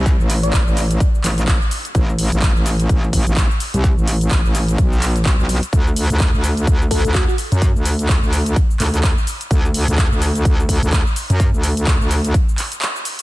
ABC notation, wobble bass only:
X:1
M:4/4
L:1/16
Q:"Swing 16ths" 1/4=127
K:Dmix
V:1 name="Wobble bass" clef=bass
C,, A,,,3 A,,, A,,,3 z2 A,,,3 z3 | A,,,3 A,,,2 A,,,3 z3 A,,,2 z2 C,,- | C,, A,,,3 z A,,,3 B,,,4 B,,, B,,,2 z | D,,3 D,,2 D,,3 D,,3 D,,2 z2 F,,- |
F,, D,,3 D,, D,,3 z2 D,,3 z3 | D,,3 D,,2 D,,3 z3 D,,2 z2 F,,- | F,, D,,3 D,, D,,3 z8 |]